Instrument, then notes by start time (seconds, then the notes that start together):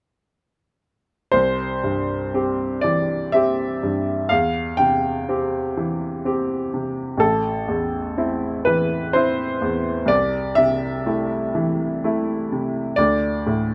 grand piano
1.32 C2 C5
1.84 G2
2.34 C4 G4
2.81 E3 D5
3.32 C4 G4 E5
3.83 G2
4.29 E2 F5
4.77 C3 G5
5.29 C4 G4
5.77 E3
6.25 C4 G4
6.74 C3
7.17 A1 A4
7.68 E2
8.17 C4 E4
8.65 E3 B4
9.13 C4 E4 C5
9.62 E2
10.06 C2 D5
10.55 C3 E5
11.06 A3 E4
11.55 E3
12.04 A3 E4
12.52 C3
12.96 D2 D5
13.47 A2